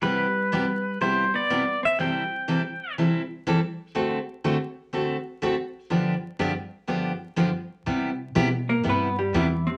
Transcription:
X:1
M:4/4
L:1/8
Q:"Swing" 1/4=123
K:C
V:1 name="Pedal steel guitar"
B4 c d2 e | g4 z4 | z8 | z8 |
z8 |]
V:2 name="Hollow-body jazz guitar"
G,4 G, B,2 C | C4 z4 | z8 | z8 |
z3 [_B,_B] [=B,=B] [G,G] [E,E] [C,C] |]
V:3 name="Steel-string acoustic guitar"
[C,G,B,EG] z [C,G,B,EG] z [C,G,B,EG] z [C,G,B,EG] z | [C,E,G,CEA] z [C,E,G,CEA] z [C,E,G,CEA] z [C,E,G,CEA] z | [D,A,C^FA] z [D,A,CFA] z [D,A,CFA] z [D,A,CFA] z | [G,,D,F,B,DG] z [G,,D,F,B,DG] z [G,,D,F,B,DG] z [G,,D,F,B,DG] z |
[C,G,B,EG] z [C,G,B,EG] z [C,G,B,EG] z [C,G,B,EG] z |]
V:4 name="Upright bass" clef=bass
z8 | z8 | z8 | z8 |
C,2 B,,2 G,,2 E,,2 |]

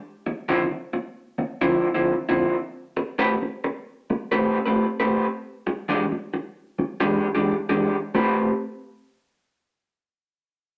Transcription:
X:1
M:4/4
L:1/16
Q:"Swing" 1/4=89
K:Am
V:1 name="Clean electric guitar"
z2 [D,F,CE] z6 [D,F,CE] z [D,F,CE] z [D,F,CE] z2 | z2 [A,CGB] z6 [A,CGB] z [A,CGB] z [A,CGB] z2 | z2 [E,^G,D=G] z6 [E,^G,D=G] z [E,^G,D=G] z [E,^G,D=G] z2 | [A,CGB]2 z12 z2 |]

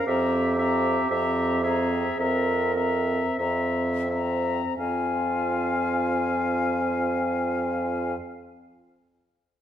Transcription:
X:1
M:4/4
L:1/8
Q:1/4=50
K:Fm
V:1 name="Flute"
b b b b b b b b | a8 |]
V:2 name="Oboe"
=e e e e e e e e | f8 |]
V:3 name="Clarinet"
G3 A B2 z2 | F8 |]
V:4 name="French horn"
C C C C C C C C | C8 |]
V:5 name="Bassoon" clef=bass
F,,2 F,,2 F,,2 F,,2 | F,,8 |]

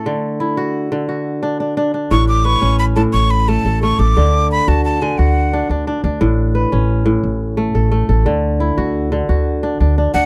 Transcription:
X:1
M:12/8
L:1/8
Q:3/8=117
K:D
V:1 name="Flute"
z12 | c' d' c'2 b a c' b a2 c' d'- | d'2 b a a ^g f3 z3 | z12 |
z8 z3 f |]
V:2 name="Kora"
A z E3 z F3 D2 D- | D z B3 z4 A2 A- | A z4 z F3 D2 D- | D z B3 z4 A2 A- |
A z E3 z F3 D2 D |]
V:3 name="Kora"
D,2 z F2 D,2 z D2 D2 | A,,2 z C2 A,,2 z A,2 A,2 | D,2 z F2 D,2 z D2 D2 | A,,2 z C2 A,,2 z A,2 A,2 |
D,2 z F2 D,2 z D2 D2 |]
V:4 name="Upright bass" clef=bass
z12 | A,,,3 A,,,3 A,,,3 A,,,2 A,,, | D,,3 D,,3 D,,3 D,,2 D,, | A,,,3 A,,,3 A,,,3 A,,,2 A,,, |
D,,3 D,,3 D,,3 D,,2 D,, |]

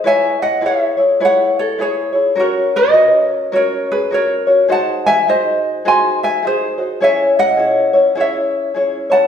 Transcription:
X:1
M:4/4
L:1/16
Q:"Swing" 1/4=104
K:C#m
V:1 name="Ukulele"
[eg]2 [df]2 [ce]4 [cf]2 [Ac]2 [Gc]3 z | [F^A]2 [Bd]4 z2 [Ac]2 [GB]2 [Ac]4 | [fa]2 [eg]2 [^Bd]4 [g^b]2 [eg]2 [GB]4 | [eg]2 [df]6 [ce]6 [fa]2 |]
V:2 name="Ukulele"
[EGBc]4 [EGBc]2 [EGc]2 [EGBc]4 [EGBc]2 [EGc]2 | [CF^Ac]4 [CFAc]4 [CFAc]4 [CFAc]2 [CFc]2 | [DFG^B]4 [DFGB]4 [DFGB]4 [DFGB]2 [DFB]2 | [CEGc]4 [CEGc]2 [CEc]2 [CEGc]4 [CEGc]2 [CEc]2 |]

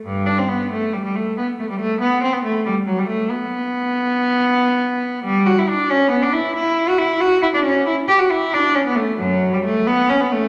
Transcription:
X:1
M:12/8
L:1/16
Q:3/8=92
K:Ador
V:1 name="Cello"
G,,2 D C B,2 A,2 G, G, A,2 B,2 A, G, A,2 B,2 C B, A,2 | G,2 F, G, A,2 B,16- B,2 | [K:Edor] G,2 F E D2 C2 B, D E2 E3 F E2 F2 E D C2 | E2 G F E2 D2 C B, A,2 [F,,F,]3 G, A,2 B,2 C B, A,2 |]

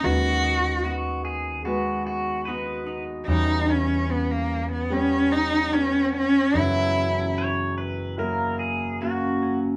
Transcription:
X:1
M:4/4
L:1/16
Q:1/4=74
K:Elyd
V:1 name="Pedal steel guitar"
z4 F2 G2 F2 F2 B3 z | z16 | z4 c2 B2 A2 G2 F3 z |]
V:2 name="Cello"
F4 z12 | D2 C2 B, A,2 B, C2 D2 C2 C2 | E4 z12 |]
V:3 name="Harp"
[D,F]2 D2 B,4 B,4 [B,DF]2 D2 | [E,=G]2 C6 B,4 [B,CG]2 C2 | [E,F]2 C6 A,4 [A,CF]2 C2 |]
V:4 name="Grand piano"
[G,FB]8 [G,FB]8 | [=G,Cc]8 [G,C=G]8 | [F,Ec]8 [F,EA]8 |]
V:5 name="Grand piano" clef=bass
[D,,D,]16 | [E,,E,]16 | [F,,,F,,]16 |]
V:6 name="Fretless electric bass" clef=bass
D,,16 | E,,16 | F,,16 |]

